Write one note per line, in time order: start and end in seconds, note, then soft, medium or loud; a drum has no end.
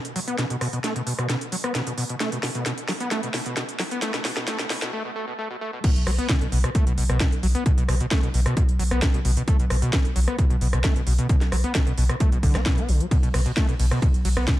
0.05 closed hi-hat medium
0.16 0.20 F#3 loud
0.16 open hi-hat medium
0.28 0.37 B3 loud
0.28 closed hi-hat medium
0.38 0.45 B2 loud
0.38 snare medium
0.38 closed hi-hat medium
0.50 0.56 B2 medium
0.50 closed hi-hat medium
0.61 0.68 B2 loud
0.61 cross-stick medium
0.61 open hi-hat loud
0.73 0.79 B2 medium
0.73 closed hi-hat medium
0.84 0.94 A3 loud
0.84 snare medium
0.84 closed hi-hat loud
0.96 1.02 B2 medium
0.96 closed hi-hat medium
1.07 1.13 B2 medium
1.07 open hi-hat loud
1.19 1.28 B2 loud
1.19 cross-stick medium
1.19 closed hi-hat medium
1.29 1.36 B2 loud
1.29 snare medium
1.29 closed hi-hat loud
1.41 closed hi-hat medium
1.52 1.56 F#3 loud
1.52 open hi-hat loud
1.64 1.73 B3 loud
1.64 cross-stick medium
1.64 closed hi-hat medium
1.75 1.81 B2 loud
1.75 snare medium
1.75 closed hi-hat medium
1.87 1.93 B2 medium
1.87 closed hi-hat medium
1.98 2.04 B2 loud
1.98 open hi-hat loud
2.09 2.15 B2 medium
2.09 closed hi-hat medium
2.20 2.30 A3 loud
2.20 snare medium
2.20 closed hi-hat loud
2.32 2.38 B2 medium
2.32 closed hi-hat medium
2.43 2.50 B2 medium
2.43 snare medium
2.43 open hi-hat loud
2.55 2.64 B2 medium
2.55 closed hi-hat medium
2.66 2.72 B2 medium
2.66 snare medium
2.66 closed hi-hat loud
2.78 closed hi-hat medium
2.88 2.93 F#3 medium
2.88 snare medium
2.88 open hi-hat loud
3.00 3.09 B3 medium
3.00 closed hi-hat medium
3.11 3.21 A3 loud
3.11 snare medium
3.11 closed hi-hat medium
3.23 3.29 B2 medium
3.23 closed hi-hat medium
3.34 3.41 B2 medium
3.34 snare medium
3.34 open hi-hat loud
3.46 3.55 B2 loud
3.46 closed hi-hat medium
3.57 3.63 B2 loud
3.57 snare medium
3.57 closed hi-hat medium
3.69 closed hi-hat medium
3.79 3.83 F#3 loud
3.79 snare medium
3.79 open hi-hat medium
3.91 4.00 B3 medium
3.91 closed hi-hat medium
4.02 4.12 A3 loud
4.02 snare medium
4.02 closed hi-hat medium
4.14 4.20 B2 medium
4.14 snare medium
4.14 closed hi-hat medium
4.25 4.31 B2 medium
4.25 snare loud
4.25 open hi-hat loud
4.37 4.46 B2 loud
4.37 snare medium
4.37 closed hi-hat medium
4.48 4.57 A3 loud
4.48 snare loud
4.48 closed hi-hat medium
4.59 4.65 B2 medium
4.59 snare medium
4.59 closed hi-hat medium
4.70 4.77 B2 medium
4.70 snare loud
4.70 open hi-hat loud
4.82 4.91 B2 loud
4.82 snare medium
4.82 closed hi-hat medium
4.93 5.03 A3 loud
5.05 5.11 B2 medium
5.16 5.26 A3 loud
5.28 5.34 B2 medium
5.39 5.48 A3 loud
5.50 5.56 B2 medium
5.61 5.71 A3 loud
5.73 5.79 B2 medium
5.84 5.91 B2 loud
5.84 kick loud
5.84 closed hi-hat loud
5.84 crash loud
5.96 6.06 B1 medium
5.96 closed hi-hat medium
6.07 6.18 B1 loud
6.07 6.11 F#3 loud
6.07 cross-stick medium
6.07 open hi-hat loud
6.19 6.28 B3 loud
6.19 closed hi-hat medium
6.29 6.36 B2 loud
6.29 kick loud
6.29 snare loud
6.29 closed hi-hat loud
6.41 6.52 B1 medium
6.41 6.47 B2 medium
6.41 closed hi-hat medium
6.52 6.64 B1 loud
6.52 6.59 B2 loud
6.52 open hi-hat loud
6.64 6.70 B2 medium
6.64 cross-stick medium
6.64 closed hi-hat medium
6.75 6.85 A3 loud
6.75 kick loud
6.75 closed hi-hat loud
6.87 6.97 B1 medium
6.87 6.93 B2 medium
6.87 closed hi-hat medium
6.98 7.09 B1 loud
6.98 7.04 B2 medium
6.98 open hi-hat loud
7.09 7.20 B1 medium
7.09 7.18 B2 loud
7.09 cross-stick medium
7.09 closed hi-hat medium
7.20 7.27 B2 loud
7.20 kick loud
7.20 snare loud
7.20 closed hi-hat medium
7.32 7.43 B1 medium
7.32 closed hi-hat medium
7.43 7.55 B1 loud
7.43 7.47 F#3 loud
7.43 open hi-hat loud
7.55 7.64 B3 loud
7.55 closed hi-hat medium
7.66 7.72 B2 loud
7.66 kick loud
7.66 closed hi-hat loud
7.78 7.88 B1 medium
7.78 7.84 B2 medium
7.78 closed hi-hat medium
7.89 8.00 B1 loud
7.89 7.95 B2 loud
7.89 cross-stick medium
7.89 open hi-hat loud
8.00 8.06 B2 medium
8.00 closed hi-hat medium
8.11 8.21 A3 loud
8.11 kick loud
8.11 snare loud
8.11 closed hi-hat loud
8.23 8.33 B1 medium
8.23 8.29 B2 medium
8.23 closed hi-hat medium
8.34 8.46 B1 loud
8.34 8.41 B2 medium
8.34 open hi-hat loud
8.46 8.55 B2 loud
8.46 cross-stick medium
8.46 closed hi-hat medium
8.57 kick loud
8.57 closed hi-hat loud
8.69 8.79 B1 medium
8.69 closed hi-hat medium
8.79 8.91 B1 loud
8.79 8.83 F#3 loud
8.79 open hi-hat loud
8.91 9.02 B1 medium
8.91 9.00 B3 loud
8.91 cross-stick medium
8.91 closed hi-hat medium
9.02 9.09 B2 loud
9.02 kick loud
9.02 snare loud
9.02 closed hi-hat loud
9.14 9.24 B1 medium
9.14 9.20 B2 medium
9.14 closed hi-hat medium
9.25 9.37 B1 loud
9.25 9.31 B2 loud
9.25 open hi-hat loud
9.37 9.43 B2 medium
9.37 closed hi-hat medium
9.48 9.57 A3 loud
9.48 kick loud
9.48 closed hi-hat loud
9.59 9.70 B1 medium
9.59 9.65 B2 medium
9.59 closed hi-hat medium
9.70 9.82 B1 loud
9.70 9.77 B2 medium
9.70 cross-stick medium
9.70 open hi-hat loud
9.82 9.91 B2 loud
9.82 closed hi-hat medium
9.93 10.00 B2 loud
9.93 kick loud
9.93 snare loud
9.93 closed hi-hat loud
10.05 10.15 B1 medium
10.05 closed hi-hat medium
10.16 10.27 B1 loud
10.16 10.20 F#3 loud
10.16 open hi-hat loud
10.28 10.37 B3 loud
10.28 cross-stick medium
10.28 closed hi-hat medium
10.38 10.45 B2 loud
10.38 kick loud
10.38 closed hi-hat loud
10.50 10.61 B1 medium
10.50 10.56 B2 medium
10.50 closed hi-hat medium
10.61 10.73 B1 loud
10.61 10.68 B2 loud
10.61 open hi-hat loud
10.73 10.84 B1 medium
10.73 10.79 B2 medium
10.73 cross-stick medium
10.73 closed hi-hat medium
10.84 10.94 A3 loud
10.84 kick loud
10.84 snare loud
10.84 closed hi-hat medium
10.96 11.06 B1 medium
10.96 11.02 B2 medium
10.96 closed hi-hat medium
11.07 11.18 B1 loud
11.07 11.13 B2 medium
11.07 open hi-hat loud
11.19 11.28 B2 loud
11.19 closed hi-hat medium
11.29 kick loud
11.29 closed hi-hat medium
11.41 11.52 B1 medium
11.41 snare soft
11.41 closed hi-hat medium
11.52 11.64 B1 loud
11.52 11.56 F#3 loud
11.52 cross-stick medium
11.52 open hi-hat loud
11.64 11.73 B3 loud
11.64 closed hi-hat medium
11.75 11.81 B2 loud
11.75 kick loud
11.75 snare loud
11.75 closed hi-hat medium
11.87 11.97 B1 medium
11.87 11.93 B2 medium
11.87 closed hi-hat medium
11.98 12.09 B1 loud
11.98 12.04 B2 loud
11.98 open hi-hat loud
12.09 12.16 B2 medium
12.09 cross-stick medium
12.09 closed hi-hat medium
12.20 12.30 A3 loud
12.20 kick loud
12.20 closed hi-hat medium
12.32 12.43 B1 medium
12.32 12.38 B2 medium
12.32 closed hi-hat soft
12.43 12.54 B1 loud
12.43 12.56 D3 medium
12.43 kick medium
12.43 open hi-hat loud
12.55 12.66 B1 medium
12.55 12.61 B3 medium
12.55 cross-stick loud
12.55 snare soft
12.55 closed hi-hat medium
12.66 12.79 B2 medium
12.66 kick loud
12.66 snare loud
12.66 closed hi-hat medium
12.78 12.88 B1 medium
12.78 12.90 B3 medium
12.78 closed hi-hat medium
12.89 13.00 B1 loud
12.89 13.02 D3 medium
12.89 open hi-hat loud
13.00 13.06 F#3 loud
13.00 closed hi-hat medium
13.11 13.18 B2 loud
13.11 kick loud
13.11 closed hi-hat medium
13.11 ride medium
13.23 13.33 B1 medium
13.23 13.29 B2 medium
13.23 closed hi-hat medium
13.34 13.46 B1 loud
13.34 13.41 B2 loud
13.34 cross-stick loud
13.34 open hi-hat loud
13.34 ride medium
13.46 13.52 B2 medium
13.46 closed hi-hat soft
13.57 13.67 A3 loud
13.57 kick loud
13.57 snare loud
13.57 closed hi-hat medium
13.57 ride medium
13.69 13.79 B1 medium
13.69 13.75 B2 medium
13.69 closed hi-hat medium
13.79 13.91 B1 loud
13.79 13.86 B2 medium
13.79 open hi-hat loud
13.79 ride medium
13.91 14.00 B2 loud
13.91 cross-stick medium
13.91 closed hi-hat medium
14.02 14.09 B2 loud
14.02 kick loud
14.02 closed hi-hat medium
14.02 ride medium
14.14 14.24 B1 medium
14.14 closed hi-hat soft
14.25 14.36 B1 loud
14.25 14.29 F#3 loud
14.25 open hi-hat loud
14.25 ride medium
14.37 14.47 B1 medium
14.37 14.46 B3 loud
14.37 cross-stick loud
14.37 closed hi-hat medium
14.48 14.54 B2 loud
14.48 kick loud
14.48 snare loud
14.48 closed hi-hat medium
14.48 ride medium